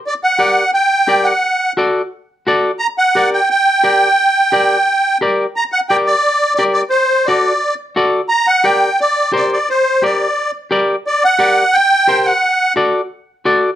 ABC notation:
X:1
M:4/4
L:1/8
Q:1/4=175
K:Gm
V:1 name="Accordion"
d ^f3 g3 f- | ^f2 z6 | b ^f2 g g4- | g6 z2 |
b ^f g d3 d d | c2 d3 z3 | b ^f g2 d2 d d | c2 d3 z3 |
d ^f3 g3 f- | ^f2 z6 |]
V:2 name="Clean electric guitar"
z2 [GBd] z3 [GBd] z | z2 [^FAd] z3 [FAd] z | z2 [GBd] z3 [GBd] z | z2 [GBd] z3 [GBd] z |
z2 [GBd] z3 [GBd] z | z2 [^FAd] z3 [FAd] z | z2 [GBd] z3 [GBc] z | z2 [GBd] z3 [GBd] z |
z2 [GBd] z3 [GBc] z | z2 [^FAd] z3 [FAd] z |]